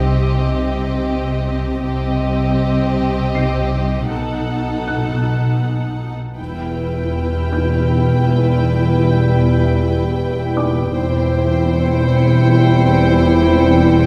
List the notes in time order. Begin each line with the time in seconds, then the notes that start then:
Already playing: C2 C3 C4 G4 D#5 A#6
1.82 C2 C3 C4 G4 D#5
3.35 C7
4.10 B1 B2 D#4 A4 F#5
4.88 F#6
6.37 E1 E2 E3 G3 B3 E4 B4 G5 E6 F6
7.53 G6
10.56 D5 D6
10.92 E1 E2 E3 G3 C4 E4 C5 G5 C7
11.71 C#7